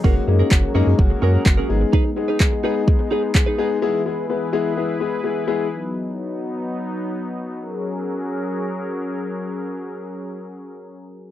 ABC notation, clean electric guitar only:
X:1
M:4/4
L:1/16
Q:1/4=127
K:F#mix
V:1 name="Clean electric guitar"
[CGA] z2 [CGA] z2 [CGA] z3 [CGA] [CGA] z [CGA] z2 | [DGB] z2 [DGB] z2 [DGB] z3 [DGB] z2 [DGB] [DGB] z | z16 | z16 |
z16 | z16 |]